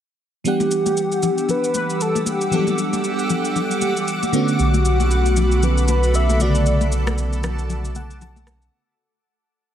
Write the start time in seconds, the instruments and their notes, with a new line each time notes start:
0.44 fm electric piano E3 G3 B3 D4 F#5, ambient pad G4 F#5 D6 E6, soft synth lead G4, shaker
0.60 high conga, shaker
0.71 shaker
0.86 high conga, shaker
0.97 shaker
1.12 shaker
1.23 low conga, shaker
1.38 shaker
1.49 soft synth lead B4, low conga, shaker
1.64 shaker
1.74 soft synth lead B4, high conga, shaker
1.90 shaker
2.01 soft synth lead A4, shaker
2.15 high conga, shaker
2.26 soft synth lead G4, high conga, shaker
2.41 shaker
2.51 fm electric piano E3 F#3 B3 D4 A4, shaker
2.58 fm electric piano G3
2.67 high conga, shaker
2.78 shaker
2.93 high conga, shaker
3.04 shaker
3.19 shaker
3.30 low conga, shaker
3.45 shaker
3.56 low conga, shaker
3.71 shaker
3.81 high conga, shaker
3.97 shaker
4.08 shaker
4.23 high conga, shaker
4.32 fm electric piano D3 A3 B3 C#4 F#4, ambient pad A4 B5, high conga, shaker
4.48 shaker
4.59 sub bass B1, soft synth lead F#4, shaker
4.74 high conga, shaker
4.85 shaker
5.00 high conga, shaker
5.11 shaker
5.26 shaker
5.36 low conga, shaker
5.52 shaker
5.62 soft synth lead B4, low conga, shaker
5.78 shaker
5.88 soft synth lead B4, high conga, shaker
6.03 shaker
6.14 soft synth lead E5, shaker
6.29 high conga, shaker
6.39 fm electric piano C#3 D3 A3 B3 F#4, soft synth lead D5, ambient pad A5, high conga, shaker
6.55 shaker
6.66 shaker
6.81 high conga, shaker
6.92 shaker
7.07 cross-stick, high conga, shaker
7.18 shaker
7.33 shaker
7.43 cross-stick, high conga, low conga, shaker
7.59 shaker
7.69 low conga, shaker
7.85 shaker
7.95 fm electric piano F#5, high conga, shaker
8.11 shaker
8.21 fm electric piano A5, low conga, shaker
8.36 high conga, shaker
8.47 cross-stick, high conga, shaker
8.62 shaker